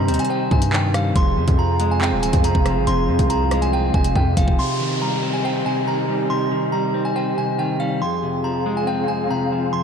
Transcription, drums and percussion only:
0.08 closed hi-hat medium
0.14 closed hi-hat medium
0.19 closed hi-hat medium
0.25 closed hi-hat soft
0.51 kick medium
0.62 closed hi-hat medium
0.73 clap loud
0.94 cross-stick loud
0.94 closed hi-hat medium
1.16 kick loud
1.16 closed hi-hat medium
1.48 kick loud
1.48 closed hi-hat medium
1.80 closed hi-hat medium
2.01 clap loud
2.23 closed hi-hat medium
2.33 kick loud
2.33 closed hi-hat medium
2.44 closed hi-hat medium
2.55 kick loud
2.66 cross-stick loud
2.66 closed hi-hat medium
2.87 closed hi-hat medium
3.19 kick loud
3.19 closed hi-hat medium
3.30 closed hi-hat medium
3.51 cross-stick loud
3.51 closed hi-hat medium
3.62 closed hi-hat soft
3.94 kick medium
4.04 closed hi-hat medium
4.16 kick medium
4.37 kick loud
4.37 closed hi-hat medium
4.48 kick loud

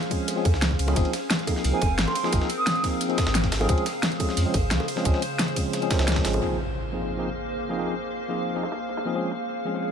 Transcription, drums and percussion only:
0.03 closed hi-hat soft
0.11 kick medium
0.11 closed hi-hat medium
0.11 ride medium
0.28 closed hi-hat medium
0.28 ride medium
0.28 high bongo soft
0.45 kick loud
0.45 closed hi-hat medium
0.45 ride medium
0.45 high bongo soft
0.54 snare medium
0.62 snare loud
0.62 closed hi-hat loud
0.62 ride medium
0.71 kick medium
0.79 closed hi-hat medium
0.79 ride medium
0.88 high bongo medium
0.96 kick loud
0.96 closed hi-hat medium
0.96 ride medium
1.05 ride soft
1.13 snare soft
1.13 closed hi-hat medium
1.13 ride medium
1.30 snare loud
1.30 closed hi-hat medium
1.30 ride medium
1.39 closed hi-hat soft
1.47 kick medium
1.47 closed hi-hat medium
1.47 ride medium
1.47 high bongo medium
1.56 snare soft
1.64 closed hi-hat medium
1.64 open hi-hat medium
1.82 kick loud
1.82 closed hi-hat medium
1.82 ride medium
1.82 high bongo medium
1.98 snare loud
1.98 closed hi-hat medium
1.98 ride medium
2.08 high bongo medium
2.15 closed hi-hat medium
2.15 ride medium
2.24 snare medium
2.33 kick loud
2.33 closed hi-hat medium
2.33 ride medium
2.41 snare medium
2.50 closed hi-hat medium
2.50 ride medium
2.67 snare loud
2.67 closed hi-hat medium
2.67 ride medium
2.75 closed hi-hat soft
2.84 kick medium
2.84 snare soft
2.84 closed hi-hat medium
2.84 ride medium
3.01 closed hi-hat medium
3.01 ride medium
3.10 ride soft
3.18 kick loud
3.18 snare loud
3.18 closed hi-hat medium
3.18 ride medium
3.18 high bongo medium
3.27 snare loud
3.27 ride medium
3.35 snare loud
3.35 closed hi-hat medium
3.35 ride soft
3.44 kick medium
3.44 snare soft
3.44 ride medium
3.52 snare loud
3.52 closed hi-hat medium
3.52 ride medium
3.61 high bongo medium
3.69 kick loud
3.69 closed hi-hat loud
3.69 ride medium
3.78 ride soft
3.86 snare soft
3.86 closed hi-hat medium
3.86 ride medium
4.03 snare loud
4.03 closed hi-hat medium
4.03 ride medium
4.12 closed hi-hat soft
4.20 kick medium
4.20 closed hi-hat medium
4.20 ride medium
4.20 high bongo medium
4.29 snare soft
4.37 closed hi-hat medium
4.37 open hi-hat medium
4.54 kick loud
4.54 closed hi-hat medium
4.54 ride medium
4.54 high bongo soft
4.71 snare loud
4.71 closed hi-hat medium
4.71 ride medium
4.80 high bongo medium
4.88 closed hi-hat medium
4.88 ride medium
4.97 snare medium
5.05 kick loud
5.05 closed hi-hat medium
5.05 ride medium
5.14 snare soft
5.22 closed hi-hat medium
5.22 ride medium
5.39 snare loud
5.39 closed hi-hat loud
5.39 ride medium
5.48 closed hi-hat soft
5.56 kick medium
5.56 closed hi-hat medium
5.56 ride medium
5.73 snare soft
5.73 closed hi-hat loud
5.73 ride medium
5.82 closed hi-hat soft
5.90 kick loud
5.90 snare loud
5.90 closed hi-hat medium
5.90 ride medium
5.90 high bongo medium
5.99 snare loud
5.99 closed hi-hat soft
5.99 ride medium
6.08 snare medium
6.08 snare loud
6.08 closed hi-hat loud
6.08 ride medium
6.12 snare medium
6.12 ride medium
6.16 kick medium
6.16 snare loud
6.16 ride medium
6.25 snare loud
6.25 closed hi-hat medium
6.25 ride medium
6.33 closed hi-hat soft
6.33 high bongo medium
6.50 ride soft
6.59 snare soft
6.59 ride medium
6.76 ride medium
6.93 ride medium
7.02 snare soft
7.10 open hi-hat medium
7.27 ride medium
7.44 ride medium
7.61 ride medium
7.70 snare medium
7.78 ride medium
7.87 snare soft
7.95 ride medium
8.12 ride medium
8.29 snare soft
8.29 ride medium
8.46 ride medium
8.63 snare medium
8.63 ride medium
8.72 snare medium
8.72 ride medium
8.80 ride soft
8.89 snare soft
8.89 ride medium
8.97 snare loud
8.97 ride medium
9.14 ride medium
9.23 ride soft
9.31 snare soft
9.31 ride medium
9.49 ride medium
9.66 ride medium
9.74 snare soft
9.83 open hi-hat medium

